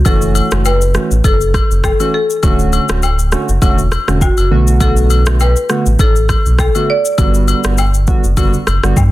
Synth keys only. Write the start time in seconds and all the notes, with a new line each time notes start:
0.05 E3 A3 C#4 F#4
0.51 E3 A3 C#4 F#4
0.94 E3 A3 C#4 F#4
2.00 E3 A3 C#4 F#4
2.43 D3 A3 C#4 F#4
2.89 D3 A3 C#4 F#4
3.32 D3 A3 C#4 F#4
3.62 D3 A3 C#4 F#4
4.08 D3 A3 C#4 F#4
4.51 D3 A3 B3 F#4
4.80 D3 A3 B3 F#4
5.27 D3 A3 B3 F#4
5.70 D3 A3 B3 F#4
6.75 D3 A3 B3 F#4
7.18 D3 G3 B3 F#4
7.64 D3 G3 B3 F#4
8.07 D3 G3 B3 F#4
8.37 D3 G3 B3 F#4
8.83 D3 G3 B3 F#4